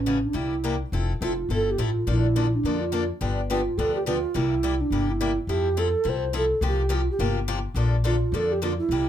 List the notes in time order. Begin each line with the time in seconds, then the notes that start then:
Already playing: A1 C#4
0.06 C#3 E3 A3 C#4 F#4
0.25 D4
0.33 C2 C3 G3 A#3 E4 G4
0.64 C3 G3 A#3 E4 G4
0.92 F1 F3 C4 E4 A4
1.21 F1 F3 C4 E4 F4 A4
1.49 G1 F3 C4 E4 A4
1.55 A4
1.71 G4
1.78 A1 F3 C4 E4 A4
1.83 F4
2.07 A#1 D3 F3 A#3 D4 E4 A4
2.36 D3 F3 A#3 D4 A4
2.55 D4
2.63 F2 D3 F3 A#3 D4 A4
2.80 F4
2.92 D3 F3 A#3 D4 A4
3.21 G1 D3 F3 B3 D4 G4
3.50 D3 F3 B3 D4 F4 G4
3.78 D2 D3 F3 B3 D4 G4 A4
3.95 G4
4.06 D3 F3 B3 D4 F4 G4
4.34 C2 C3 G3 A#3 E4 G4
4.63 C3 G3 A#3 E4 G4
4.81 D4
4.90 G1 C3 G3 A#3 E4 G4
5.10 E4
5.21 C3 G3 A#3 E4 G4
5.47 F2 F3 C4 E4 G4 A4
5.77 F3 C4 E4 A4
6.04 C2 F3 C4 E4 A4
6.09 C5
6.33 F3 C4 E4 A4
6.37 A4
6.61 C2 C3 F3 A#3 F4 G4
6.67 G4
6.89 C3 F3 A#3 F4 G4
6.94 F4
7.11 G4
7.19 G1 C3 F3 A#3 F4 G4
7.48 C3 F3 A#3 F4 G4
7.74 A#1 D3 F3 A#3 D4 A4
8.04 D3 F3 A#3 D4 F4 A4
8.32 F2 D3 F3 A#3 D4 A4
8.52 G4
8.62 D3 F3 A#3 D4 F4 A4
8.79 E4
8.89 C2 C3 G3 A#3 E4 G4